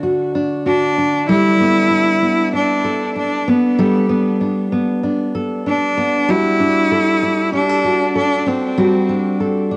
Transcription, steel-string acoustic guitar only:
Already playing: D3 D4
0.03 F#4
0.35 D4
0.66 F#4
0.98 D4
1.29 G3 A4
1.60 B3
1.91 D4
2.22 B3
2.53 D4
2.84 A4
3.16 D4
3.48 B3
3.79 G3 A4
4.09 B3
4.41 D4
4.72 B3
5.03 D4
5.35 A4
5.66 D4
5.97 B3
6.28 G3 F#4
6.60 D4
6.91 A4
7.23 D4
7.53 G4
7.69 A4
7.84 F#4
8.15 A4
8.46 D4
8.77 G3 F#4
9.09 D4
9.40 A4
9.71 D4

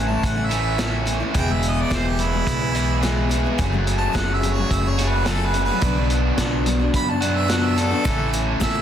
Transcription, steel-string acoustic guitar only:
0.08 A3 C#4 E4
0.36 A3 C#4 E4
0.50 E3 A3 C#4 E4
0.78 A2 E3 A3 C#4 E4
1.06 E3 A3 C#4 E4
1.20 A3 C#4 E4
1.34 E2 B2 E3 G#3 B3 G#4
1.48 E3 G#3 B3 G#4
1.90 E2 B2 E3 G#3 B3 G#4
2.17 E3 G#3 B3 G#4
2.32 E3 G#3 B3 G#4
2.60 E3 G#3 B3 G#4
2.74 E3 G#3 B3 G#4
3.03 E2 B2 E3 G#3 B3 G#4
3.29 E3 G#3 B3 G#4
3.45 E3 G#3 B3 G#4
3.58 F#2 C#3 F#3 A3 C#4 G#4
3.72 F#3 A3 C#4 G#4
4.13 F#2 C#3 F#3 A3 C#4 G#4
4.41 F#3 A3 C#4 G#4
4.55 F#3 A3 C#4 G#4
4.85 F#3 A3 C#4 G#4
5.00 F#3 A3 C#4 G#4
5.27 F#2 C#3 F#3 A3 C#4 G#4
5.56 F#3 A3 C#4 G#4
5.69 F#3 A3 C#4 G#4
5.83 B2 F#3 B3 D4 F#4
5.97 B3 D4 F#4
6.38 B2 F#3 B3 D4 F#4
6.66 F#3 B3 D4 F#4
6.79 B3 D4 F#4
7.07 B3 D4 F#4
7.23 F#3 B3 D4 F#4
7.48 B2 F#3 B3 D4 F#4
7.75 F#3 B3 D4 F#4
7.91 B3 D4 F#4
8.05 A2 E3 A3 C#4 A4
8.17 A3 C#4 A4
8.60 A2 E3 A3 C#4 A4

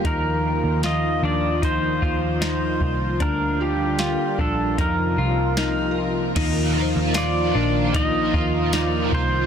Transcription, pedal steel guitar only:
0.07 A#4
0.86 D#5
1.25 D5
1.65 C5
3.22 A#4
3.62 G4
4.41 A4
4.81 A#4
7.18 D5
7.96 D#5
8.76 D5
9.15 C5

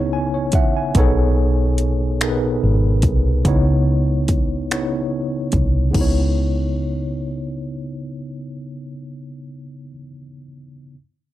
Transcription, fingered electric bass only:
Already playing: C#2
0.54 A#1
0.96 B1
2.63 G#1
3.04 C2
3.46 C#2
5.53 C2
5.95 C#2

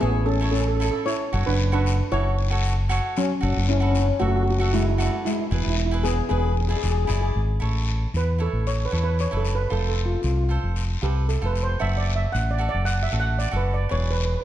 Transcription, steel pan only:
0.01 B3 G#4
0.26 C#4 A4
0.51 C#4 A4
0.61 A4
0.68 A4
0.77 A4
0.85 A4
0.91 A4
1.06 E4 C#5
1.46 D4 B4
1.73 D4 B4
2.12 E4 C#5
3.18 F#3 C#4
3.69 C#4 E4
3.78 C#4
3.85 C#4
3.92 C#4
3.99 C#4
4.07 C#4
4.20 A3 F#4
4.28 F#4
4.36 F#4
4.43 F#4
4.51 F#4
4.59 F#4
4.73 G#3 E4
4.81 E4
4.89 E4
4.98 E4
5.03 E4
5.11 E4
5.25 G#3 E4
5.33 E4
5.39 E4
5.47 E4
5.55 E4
5.63 E4
5.70 E4
5.78 E4
5.86 E4
6.03 B3 G#4
6.29 B3 G#4
6.38 G#4
6.45 G#4
6.53 G#4
6.61 G#4
6.68 G#4
6.76 G#4
6.83 G#4
6.91 G#4
6.98 G#4
7.05 G#4
7.13 G#4
7.21 G#4
8.17 B4
8.42 A4
8.67 C#5
8.85 B4
9.04 B4
9.21 C#5
9.37 A4
9.55 B4
9.72 A4
9.89 A4
10.06 F4
10.15 F4
10.22 F4
10.28 F4
10.37 F4
10.44 F4
11.03 G4
11.29 A4
11.46 B4
11.63 C5
11.80 E5
11.98 D5
12.16 E5
12.32 F#5
12.51 D5
12.69 D5
12.85 F#5
13.03 E5
13.20 F#5
13.39 D5
13.56 B4
13.74 D5
13.91 C#5
14.11 B4
14.17 B4
14.25 B4
14.34 B4
14.41 B4

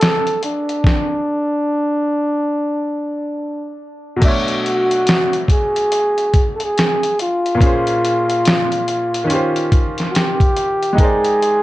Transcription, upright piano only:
Already playing: B2 A3 D4 E4 C#5
4.16 B2 F#3
4.21 A3 D4
4.25 C#5 E5
7.55 A#2 A#3
7.61 C#4 G#4
7.66 C5
9.24 D#3 C#4
9.30 F4 G4
9.35 C5
10.93 G#3 D#4
10.97 A#4 G5
11.02 C5 D5

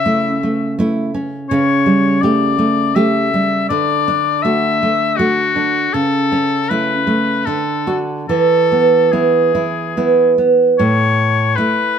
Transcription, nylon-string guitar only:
Already playing: C#3 C#4
0.06 A3 E4
0.43 A3
0.79 A3 E4
1.14 C#4
1.51 C#3
1.86 G3
2.23 A3 G4
2.59 A3
2.96 A3 G4
3.34 G3
3.70 D3
4.08 D4
4.44 A3 F#4
4.83 A3
5.19 A3 F#4
5.56 D4
5.94 C#3
6.32 C#4
6.70 A3 E4
7.07 A3
7.47 D3
7.87 D4 F#4
8.29 E3
8.72 B3
9.13 B3 E4
9.55 E4
9.97 B3 E4
10.38 B3
10.79 A2
11.58 A3 E4

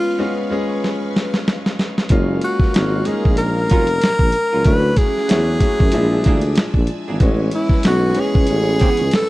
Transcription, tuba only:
2.11 F#1
2.77 G#1
3.26 A#1
3.73 F1
4.04 A#1
4.21 A#1
4.54 C#2
4.67 D2
5.32 E2
5.82 F#2
5.96 A#1
6.27 D2
6.59 A#1
6.75 A#1
7.09 G#1
7.22 A1
7.87 B1
8.36 C#2
8.50 A1
9.00 C#2
9.14 G#1

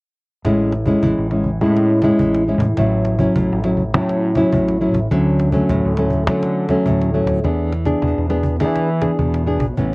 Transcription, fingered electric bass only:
0.45 A1
1.03 A1
1.18 A1
1.61 A2
2.19 A1
2.58 A2
2.77 A1
3.36 A1
3.52 A1
3.94 A2
4.53 A1
4.92 A1
5.11 D2
5.69 D2
5.85 D2
6.27 D3
6.86 D2
7.25 D2
7.44 E2
8.02 E2
8.18 E2
8.60 E3
9.19 E2
9.58 A#1
9.78 A1

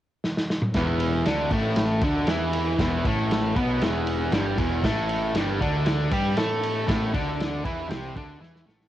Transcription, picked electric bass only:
0.75 E1
1.26 D2
1.51 A1
2.02 D2
2.27 E2
2.78 E1
3.05 A1
3.56 B1
3.80 E1
4.31 G1
4.58 E1
4.84 A1
5.34 G1
5.61 D2
6.11 G2
6.37 A2
6.88 A1
7.14 D2
7.65 E2
7.90 C2
8.16 D2
8.41 E2
8.67 A1

